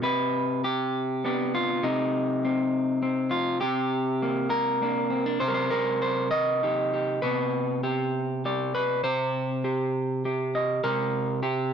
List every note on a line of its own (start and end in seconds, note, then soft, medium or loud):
0.02 1.80 C3 medium
0.02 0.64 B4 medium
0.64 1.24 G4 medium
1.24 1.81 B3 soft
1.24 1.81 D4 soft
1.24 1.54 G4 soft
1.55 1.84 F4 medium
1.83 3.58 C3 medium
1.83 3.62 D#4 medium
2.45 3.01 C4 soft
3.02 3.58 C4 soft
3.31 3.60 F4 medium
3.61 5.38 C3 medium
3.61 4.50 G4 medium
4.22 4.81 A#3 soft
4.50 5.40 A#4 loud
4.82 5.38 A#3 soft
4.82 5.10 D4 soft
5.10 5.26 C4 soft
5.26 5.41 D4 soft
5.40 7.19 C3 medium
5.40 5.53 C5 medium
5.48 5.69 A#4 medium
5.54 6.01 C5 medium
5.71 6.62 A#4 medium
6.02 6.30 C5 medium
6.31 7.22 D#5 medium
6.63 7.20 D#4 soft
6.63 6.93 G4 soft
6.94 7.22 G4 soft
7.22 9.01 C3 medium
7.22 9.02 B3 soft
7.22 7.83 B4 medium
7.83 8.44 G4 medium
8.45 8.74 G4 soft
8.45 9.01 D5 soft
8.75 9.03 B4 medium
9.04 10.80 C3 medium
9.04 10.83 C5 medium
9.64 10.25 G4 soft
10.25 11.43 G4 soft
10.55 10.81 D#5 soft
10.84 11.73 C3 medium
10.84 11.42 A#4 loud
11.43 11.73 G4 medium